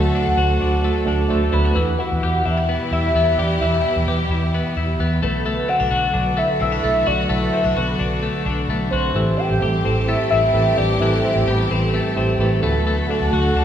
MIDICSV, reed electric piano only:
0, 0, Header, 1, 2, 480
1, 0, Start_track
1, 0, Key_signature, 1, "minor"
1, 0, Tempo, 462250
1, 1828, Time_signature, 4, 2, 24, 8
1, 14169, End_track
2, 0, Start_track
2, 0, Title_t, "Reed electric piano"
2, 0, Program_c, 0, 4
2, 0, Control_c, 0, 64, 127
2, 0, Note_on_c, 0, 57, 95
2, 0, Note_on_c, 0, 62, 84
2, 0, Note_on_c, 0, 66, 88
2, 0, Note_on_c, 0, 69, 77
2, 0, Note_on_c, 0, 71, 87
2, 0, Note_on_c, 0, 72, 102
2, 135, Note_off_c, 0, 57, 0
2, 135, Note_on_c, 0, 57, 78
2, 136, Note_off_c, 0, 62, 0
2, 136, Note_on_c, 0, 62, 74
2, 144, Note_off_c, 0, 66, 0
2, 144, Note_on_c, 0, 66, 70
2, 145, Note_off_c, 0, 69, 0
2, 145, Note_on_c, 0, 69, 88
2, 318, Note_off_c, 0, 57, 0
2, 319, Note_off_c, 0, 62, 0
2, 323, Note_off_c, 0, 66, 0
2, 323, Note_off_c, 0, 69, 0
2, 379, Note_on_c, 0, 57, 82
2, 389, Note_on_c, 0, 62, 67
2, 392, Note_on_c, 0, 66, 68
2, 398, Note_off_c, 0, 72, 0
2, 398, Note_on_c, 0, 72, 85
2, 560, Note_off_c, 0, 57, 0
2, 565, Note_off_c, 0, 62, 0
2, 566, Note_off_c, 0, 66, 0
2, 569, Note_off_c, 0, 72, 0
2, 617, Note_on_c, 0, 57, 86
2, 618, Note_on_c, 0, 62, 88
2, 618, Note_on_c, 0, 66, 79
2, 628, Note_on_c, 0, 72, 94
2, 799, Note_off_c, 0, 57, 0
2, 799, Note_off_c, 0, 62, 0
2, 799, Note_off_c, 0, 66, 0
2, 804, Note_off_c, 0, 72, 0
2, 853, Note_on_c, 0, 57, 88
2, 858, Note_on_c, 0, 62, 80
2, 861, Note_on_c, 0, 66, 87
2, 867, Note_on_c, 0, 69, 98
2, 1037, Note_off_c, 0, 57, 0
2, 1039, Note_off_c, 0, 62, 0
2, 1041, Note_off_c, 0, 66, 0
2, 1044, Note_off_c, 0, 69, 0
2, 1096, Note_on_c, 0, 57, 107
2, 1101, Note_on_c, 0, 62, 96
2, 1105, Note_on_c, 0, 66, 97
2, 1105, Note_on_c, 0, 69, 115
2, 1278, Note_off_c, 0, 57, 0
2, 1280, Note_off_c, 0, 62, 0
2, 1282, Note_off_c, 0, 66, 0
2, 1283, Note_off_c, 0, 69, 0
2, 1334, Note_on_c, 0, 57, 114
2, 1341, Note_on_c, 0, 62, 108
2, 1346, Note_on_c, 0, 66, 104
2, 1349, Note_on_c, 0, 72, 113
2, 1517, Note_off_c, 0, 57, 0
2, 1521, Note_off_c, 0, 62, 0
2, 1523, Note_off_c, 0, 66, 0
2, 1525, Note_off_c, 0, 72, 0
2, 1575, Note_on_c, 0, 57, 82
2, 1579, Note_on_c, 0, 62, 77
2, 1586, Note_on_c, 0, 66, 74
2, 1591, Note_on_c, 0, 69, 86
2, 1757, Note_off_c, 0, 57, 0
2, 1759, Note_off_c, 0, 62, 0
2, 1763, Note_off_c, 0, 66, 0
2, 1766, Note_off_c, 0, 69, 0
2, 1839, Note_off_c, 0, 71, 0
2, 1839, Control_c, 0, 64, 0
2, 2013, Control_c, 0, 64, 127
2, 5440, Control_c, 0, 64, 0
2, 9500, Note_on_c, 0, 60, 93
2, 9508, Note_on_c, 0, 64, 86
2, 9508, Note_on_c, 0, 67, 89
2, 9514, Note_on_c, 0, 69, 114
2, 9679, Note_off_c, 0, 60, 0
2, 9683, Note_off_c, 0, 64, 0
2, 9683, Note_off_c, 0, 67, 0
2, 9686, Note_off_c, 0, 69, 0
2, 9712, Control_c, 0, 64, 127
2, 9744, Note_on_c, 0, 60, 74
2, 9749, Note_on_c, 0, 64, 79
2, 9754, Note_on_c, 0, 67, 71
2, 9758, Note_on_c, 0, 69, 89
2, 9921, Note_off_c, 0, 60, 0
2, 9924, Note_off_c, 0, 64, 0
2, 9926, Note_off_c, 0, 67, 0
2, 9928, Note_off_c, 0, 69, 0
2, 9980, Note_on_c, 0, 60, 85
2, 9981, Note_on_c, 0, 64, 72
2, 9992, Note_on_c, 0, 67, 65
2, 9993, Note_on_c, 0, 69, 90
2, 10159, Note_off_c, 0, 60, 0
2, 10160, Note_off_c, 0, 64, 0
2, 10165, Note_off_c, 0, 67, 0
2, 10166, Note_off_c, 0, 69, 0
2, 10211, Note_on_c, 0, 60, 74
2, 10220, Note_on_c, 0, 64, 76
2, 10224, Note_on_c, 0, 67, 68
2, 10230, Note_on_c, 0, 69, 84
2, 10395, Note_off_c, 0, 60, 0
2, 10399, Note_off_c, 0, 64, 0
2, 10401, Note_off_c, 0, 67, 0
2, 10404, Note_off_c, 0, 69, 0
2, 10463, Note_on_c, 0, 60, 74
2, 10464, Note_on_c, 0, 64, 71
2, 10469, Note_on_c, 0, 67, 67
2, 10472, Note_on_c, 0, 72, 83
2, 10640, Note_off_c, 0, 60, 0
2, 10641, Note_off_c, 0, 64, 0
2, 10644, Note_off_c, 0, 67, 0
2, 10645, Note_off_c, 0, 72, 0
2, 10693, Note_on_c, 0, 60, 93
2, 10699, Note_on_c, 0, 64, 85
2, 10703, Note_on_c, 0, 67, 83
2, 10707, Note_on_c, 0, 71, 114
2, 10876, Note_off_c, 0, 60, 0
2, 10879, Note_off_c, 0, 64, 0
2, 10881, Note_off_c, 0, 67, 0
2, 10883, Note_off_c, 0, 71, 0
2, 10940, Note_on_c, 0, 60, 93
2, 10943, Note_on_c, 0, 64, 86
2, 10946, Note_on_c, 0, 67, 87
2, 10949, Note_on_c, 0, 71, 98
2, 11119, Note_off_c, 0, 60, 0
2, 11121, Note_off_c, 0, 64, 0
2, 11122, Note_off_c, 0, 67, 0
2, 11124, Note_off_c, 0, 71, 0
2, 11186, Note_on_c, 0, 60, 76
2, 11189, Note_on_c, 0, 64, 61
2, 11194, Note_on_c, 0, 67, 74
2, 11200, Note_on_c, 0, 69, 77
2, 11362, Note_off_c, 0, 60, 0
2, 11364, Note_off_c, 0, 64, 0
2, 11366, Note_off_c, 0, 67, 0
2, 11369, Note_off_c, 0, 69, 0
2, 11418, Note_on_c, 0, 60, 94
2, 11428, Note_on_c, 0, 64, 85
2, 11429, Note_on_c, 0, 67, 89
2, 11434, Note_on_c, 0, 69, 115
2, 11598, Note_off_c, 0, 60, 0
2, 11603, Note_off_c, 0, 64, 0
2, 11603, Note_off_c, 0, 67, 0
2, 11606, Note_off_c, 0, 69, 0
2, 11663, Note_on_c, 0, 64, 77
2, 11667, Note_on_c, 0, 60, 84
2, 11673, Note_on_c, 0, 67, 72
2, 11676, Note_on_c, 0, 72, 90
2, 11841, Note_off_c, 0, 64, 0
2, 11843, Note_off_c, 0, 60, 0
2, 11846, Note_off_c, 0, 67, 0
2, 11847, Note_off_c, 0, 72, 0
2, 11906, Note_on_c, 0, 60, 77
2, 11911, Note_on_c, 0, 64, 77
2, 11915, Note_on_c, 0, 67, 75
2, 11916, Note_on_c, 0, 69, 88
2, 12082, Note_off_c, 0, 60, 0
2, 12085, Note_off_c, 0, 64, 0
2, 12087, Note_off_c, 0, 67, 0
2, 12087, Note_off_c, 0, 69, 0
2, 12155, Note_on_c, 0, 60, 78
2, 12162, Note_on_c, 0, 64, 65
2, 12165, Note_on_c, 0, 67, 72
2, 12169, Note_on_c, 0, 71, 82
2, 12327, Note_off_c, 0, 60, 0
2, 12330, Note_off_c, 0, 64, 0
2, 12332, Note_off_c, 0, 67, 0
2, 12334, Note_off_c, 0, 71, 0
2, 12397, Note_on_c, 0, 60, 86
2, 12402, Note_on_c, 0, 64, 76
2, 12403, Note_on_c, 0, 67, 76
2, 12411, Note_on_c, 0, 69, 91
2, 12568, Note_off_c, 0, 60, 0
2, 12571, Note_off_c, 0, 64, 0
2, 12571, Note_off_c, 0, 67, 0
2, 12575, Note_off_c, 0, 69, 0
2, 12628, Note_on_c, 0, 60, 112
2, 12631, Note_on_c, 0, 64, 108
2, 12634, Note_on_c, 0, 67, 103
2, 12640, Note_on_c, 0, 72, 127
2, 12803, Note_off_c, 0, 60, 0
2, 12805, Note_off_c, 0, 64, 0
2, 12806, Note_off_c, 0, 67, 0
2, 12809, Note_off_c, 0, 72, 0
2, 12868, Note_on_c, 0, 60, 113
2, 12874, Note_on_c, 0, 64, 100
2, 12876, Note_on_c, 0, 67, 110
2, 12881, Note_on_c, 0, 71, 117
2, 13043, Note_off_c, 0, 60, 0
2, 13046, Note_off_c, 0, 64, 0
2, 13048, Note_off_c, 0, 67, 0
2, 13050, Note_off_c, 0, 71, 0
2, 13106, Note_on_c, 0, 62, 75
2, 13108, Note_on_c, 0, 57, 80
2, 13112, Note_on_c, 0, 66, 76
2, 13119, Control_c, 0, 64, 0
2, 13119, Note_on_c, 0, 69, 84
2, 13309, Control_c, 0, 64, 127
2, 13491, Note_off_c, 0, 57, 0
2, 13491, Note_off_c, 0, 62, 0
2, 13493, Note_off_c, 0, 66, 0
2, 13497, Note_off_c, 0, 69, 0
2, 13586, Note_on_c, 0, 57, 79
2, 13586, Note_on_c, 0, 62, 72
2, 13590, Note_on_c, 0, 66, 75
2, 13597, Note_on_c, 0, 69, 85
2, 13762, Note_off_c, 0, 62, 0
2, 13763, Note_off_c, 0, 57, 0
2, 13764, Note_off_c, 0, 66, 0
2, 13768, Note_off_c, 0, 69, 0
2, 13819, Note_on_c, 0, 57, 79
2, 13828, Note_on_c, 0, 62, 68
2, 13829, Note_on_c, 0, 66, 75
2, 13836, Note_on_c, 0, 69, 96
2, 13999, Note_off_c, 0, 57, 0
2, 14004, Note_off_c, 0, 62, 0
2, 14004, Note_off_c, 0, 66, 0
2, 14008, Note_off_c, 0, 69, 0
2, 14065, Note_on_c, 0, 57, 76
2, 14069, Note_on_c, 0, 62, 68
2, 14074, Note_on_c, 0, 66, 73
2, 14077, Note_on_c, 0, 69, 81
2, 14169, Note_off_c, 0, 57, 0
2, 14169, Note_off_c, 0, 62, 0
2, 14169, Note_off_c, 0, 66, 0
2, 14169, Note_off_c, 0, 69, 0
2, 14169, End_track
0, 0, End_of_file